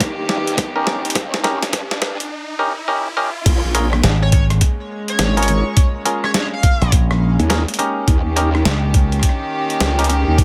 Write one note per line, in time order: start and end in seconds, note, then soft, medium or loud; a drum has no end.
0.00 0.15 D#2 loud
0.00 2.28 D#3 medium
0.00 2.26 A#3 medium
0.00 2.26 C#4 medium
0.00 2.28 G4 medium
0.00 kick loud
0.00 snare medium
0.00 closed hi-hat medium
0.00 riser medium
0.18 0.56 G2 loud
0.29 snare medium
0.47 closed hi-hat medium
0.57 1.02 D#2 medium
0.57 kick loud
0.57 snare medium
0.57 closed hi-hat medium
0.76 1.41 C#4 medium
0.76 1.42 D#4 medium
0.76 1.42 G4 medium
0.76 1.41 A#4 medium
0.87 snare medium
1.05 1.43 D#2 loud
1.05 closed hi-hat medium
1.10 closed hi-hat medium
1.15 kick loud
1.15 snare medium
1.15 closed hi-hat medium
1.34 snare medium
1.44 1.60 D#2 loud
1.44 1.64 C#4 medium
1.44 1.64 D#4 medium
1.44 1.64 G4 medium
1.44 1.64 A#4 medium
1.44 snare loud
1.62 2.17 G2 loud
1.62 snare medium
1.62 closed hi-hat medium
1.73 kick loud
1.73 snare loud
1.73 closed hi-hat medium
1.91 snare medium
2.02 snare loud
2.20 2.31 C#2 loud
2.20 closed hi-hat medium
2.59 2.73 C#4 medium
2.59 2.73 D#4 medium
2.59 2.73 G4 medium
2.59 2.73 A#4 loud
2.88 3.08 C#4 medium
2.88 3.08 D#4 medium
2.88 3.08 G4 medium
2.88 3.08 A#4 loud
3.17 3.30 C#4 loud
3.17 3.30 D#4 medium
3.17 3.30 G4 medium
3.17 3.30 A#4 loud
3.46 3.61 A#1 medium
3.46 8.03 G#3 medium
3.46 10.44 A#3 medium
3.46 10.44 C#4 medium
3.46 kick loud
3.46 closed hi-hat medium
3.46 crash loud
3.65 4.02 A#1 loud
3.75 3.88 C#4 medium
3.75 3.88 F4 medium
3.75 3.88 G#4 medium
3.75 3.88 A#4 loud
3.75 closed hi-hat medium
3.93 cross-stick medium
4.04 4.60 G#1 medium
4.04 snare loud
4.04 closed hi-hat medium
4.22 4.29 C#5 medium
4.32 4.44 C#5 medium
4.32 kick loud
4.32 closed hi-hat medium
4.50 cross-stick soft
4.50 closed hi-hat soft
4.61 kick medium
4.61 closed hi-hat medium
5.08 5.88 C#5 loud
5.08 closed hi-hat soft
5.19 5.63 G#1 medium
5.19 snare loud
5.19 closed hi-hat medium
5.37 6.03 C#4 medium
5.37 6.03 F4 medium
5.37 6.03 G#4 medium
5.37 6.03 A#4 medium
5.37 closed hi-hat medium
5.43 closed hi-hat medium
5.48 closed hi-hat medium
5.77 kick loud
5.77 closed hi-hat medium
6.05 6.26 C#4 medium
6.05 6.26 F4 medium
6.05 6.26 G#4 medium
6.05 6.26 A#4 medium
6.05 closed hi-hat medium
6.24 6.31 C#5 medium
6.24 cross-stick medium
6.34 6.46 C#5 medium
6.34 snare loud
6.34 closed hi-hat medium
6.53 6.93 F5 loud
6.63 kick loud
6.63 closed hi-hat medium
6.82 7.36 A#1 loud
6.82 cross-stick soft
6.82 closed hi-hat soft
6.92 kick loud
6.92 closed hi-hat medium
7.11 cross-stick medium
7.39 7.65 D#2 loud
7.39 closed hi-hat soft
7.50 7.63 C#4 loud
7.50 7.63 F4 medium
7.50 7.63 G#4 medium
7.50 7.63 A#4 loud
7.50 snare loud
7.50 closed hi-hat medium
7.68 closed hi-hat medium
7.74 closed hi-hat medium
7.79 8.34 C#4 loud
7.79 8.34 D#4 medium
7.79 8.34 G4 medium
7.79 8.34 A#4 loud
7.79 closed hi-hat medium
8.07 8.23 D#2 medium
8.07 10.44 D#3 medium
8.07 10.44 G4 loud
8.07 kick loud
8.07 closed hi-hat medium
8.25 8.63 D#2 loud
8.36 8.50 C#4 medium
8.36 8.50 D#4 medium
8.36 8.50 G4 medium
8.36 8.50 A#4 loud
8.36 closed hi-hat medium
8.55 cross-stick medium
8.65 9.21 C#2 loud
8.65 snare loud
8.65 closed hi-hat medium
8.94 kick loud
8.94 closed hi-hat medium
9.12 cross-stick soft
9.12 closed hi-hat soft
9.19 kick medium
9.19 cross-stick soft
9.19 closed hi-hat medium
9.29 cross-stick soft
9.70 closed hi-hat soft
9.80 10.25 C#2 medium
9.80 snare loud
9.80 closed hi-hat medium
9.99 10.44 C#4 medium
9.99 10.44 D#4 medium
9.99 10.44 G4 medium
9.99 10.44 A#4 medium
9.99 closed hi-hat medium
10.04 closed hi-hat medium
10.10 closed hi-hat medium
10.28 10.44 D#2 loud
10.38 kick loud
10.38 closed hi-hat medium